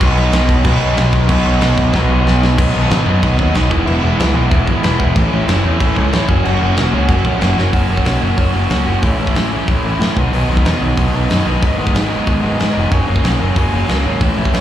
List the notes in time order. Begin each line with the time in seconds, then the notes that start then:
0.00 B1 B2 F#3 B3 D#4, kick, crash
0.15 B1, crash
0.32 B1, snare, crash
0.49 kick, crash
0.64 B1 B2 F#3 B3 D#4, kick, crash
0.80 B1, crash
0.96 B1, snare, crash
1.12 kick, crash
1.27 B1 B2 F#3 B3 D#4, kick, crash
1.45 B1, crash
1.61 B1, snare, crash
1.77 kick, crash
1.92 B1 B2 F#3 B3, kick, snare
1.96 D#4
2.09 B1
2.25 B1, snare
2.43 snare
2.57 B1 B2 D#3 F#3 B3 D#4, kick, crash
2.74 B1 B2 D#3 F#3 B3 D#4
2.90 G#1 B2 D#3 F#3 B3 D#4, snare, crash
3.06 F#2 B2 D#3 F#3 B3 D#4
3.22 B1 B2 D#3 F#3 B3 D#4, kick, crash
3.38 D#2 B2 D#3 F#3 B3 D#4, kick
3.54 B1 B2 D#3 F#3 B3 D#4, snare, crash
3.70 E1 E3 G#3 B3 E4, kick
3.86 E1 E3 G#3 B3 E4, crash
4.02 E1 E3 G#3 B3 E4
4.18 C#2 E3 G#3 B3 E4, snare, crash
4.34 B1 E3 G#3 B3 E4
4.50 E1 E3 G#3 B3 E4, kick, crash
4.66 G#1 E3 G#3 B3 E4, kick
4.83 E1 E3 G#3 B3 E4, snare, crash
4.99 E1 E3 G#3 B3 E4, kick
5.15 A1 A2 E3 A3 C#4 E4, kick, crash
5.31 A1 A2 E3 A3 C#4 E4
5.47 F#1 A2 E3 A3 C#4 E4, snare, crash
5.63 E2 A2 E3 A3 C#4 E4
5.79 A1 A2 E3 A3 C#4 E4, kick, crash
5.95 C#2 A2 E3 A3 C#4 E4, kick
6.12 A1 A2 E3 A3 C#4 E4, snare, crash
6.28 F#1 F#3 A#3 C#4 F#4, kick
6.44 F#1 F#3 A#3 C#4 F#4, crash
6.60 F#1 F#3 A#3 C#4 F#4
6.76 E1 F#3 A#3 C#4 F#4, snare, crash
6.92 C#2 F#3 A#3 C#4 F#4
7.08 F#1 F#3 A#3 C#4 F#4, kick, crash
7.25 A#1 F#3 A#3 C#4 F#4, kick
7.40 F#1 F#3 A#3 C#4 F#4, snare, crash
7.56 F#1 F#3 A#3 C#4 F#4, snare
7.72 F#1 F#3 A#3 C#4 F#4, kick, open hi-hat
7.89 F#1 F#3 A#3 C#4 F#4
7.97 kick
8.05 B1 F#3 A#3 C#4 F#4, snare, open hi-hat
8.21 F#1 F#3 A#3 C#4 F#4
8.37 F#1 F#3 A#3 C#4 F#4, kick, open hi-hat
8.53 F#1 F#3 A#3 C#4 F#4
8.69 C#2 F#3 A#3 C#4 F#4, snare, open hi-hat
8.86 F#1 F#3 A#3 C#4 F#4
9.02 A1 A2 E3 A3 C#4 E4, kick, open hi-hat
9.18 A1 A2 E3 A3 C#4 E4
9.27 kick
9.35 A1 A2 E3 A3 C#4 E4, snare, open hi-hat
9.51 A2 E3 A3 C#4 E4
9.67 A1 A2 E3 A3 C#4 E4, kick, open hi-hat
9.83 A1 A2 E3 A3 C#4 E4
9.99 A2 E3 A3 C#4 E4, snare, open hi-hat
10.16 B1 B2 D#3 F#3 B3 D#4, kick
10.32 B1 B2 D#3 F#3 B3 D#4, open hi-hat
10.48 B1 B2 D#3 F#3 B3 D#4
10.57 kick
10.65 E2 B2 D#3 F#3 B3 D#4, snare, open hi-hat
10.80 B1 B2 D#3 F#3 B3 D#4
10.97 B1 B2 D#3 F#3 B3 D#4, kick, open hi-hat
11.13 B1 B2 D#3 F#3 B3 D#4
11.29 F#2 B2 D#3 F#3 B3 D#4, snare, open hi-hat
11.45 B1 B2 D#3 F#3 B3 D#4
11.61 G#1 G#2 D#3 G#3 B3 D#4, kick, open hi-hat
11.78 G#1 G#2 D#3 G#3 B3 D#4
11.87 kick
11.94 G#1 G#2 D#3 G#3 B3 D#4, snare, open hi-hat
12.09 G#2 D#3 G#3 B3 D#4
12.26 G#1 G#2 D#3 G#3 B3 D#4, kick, open hi-hat
12.43 G#1 G#2 D#3 G#3 B3 D#4
12.58 G#2 D#3 G#3 B3 D#4, snare, open hi-hat
12.74 F1 G#2 D#3 G#3 B3 D#4
12.90 F#1 F#2 C#3 F#3 A#3 C#4, kick, open hi-hat
13.07 F#1 F#2 C#3 F#3 A#3 C#4
13.16 kick
13.23 B1 F#2 C#3 F#3 A#3 C#4, snare, open hi-hat
13.39 F#1 F#2 C#3 F#3 A#3 C#4
13.56 F#1 F#2 C#3 F#3 A#3 C#4, kick, open hi-hat
13.72 F#1 F#2 C#3 F#3 A#3 C#4
13.88 C#2 F#2 C#3 F#3 A#3 C#4, snare, open hi-hat
14.04 G#1 F#2 C#3 F#3 A#3 C#4
14.21 A1 A2 E3 A3 C#4 E4, kick, open hi-hat
14.36 A1 A2 E3 A3 C#4 E4
14.45 kick
14.52 A1 A2 E3 A3 C#4 E4, snare, open hi-hat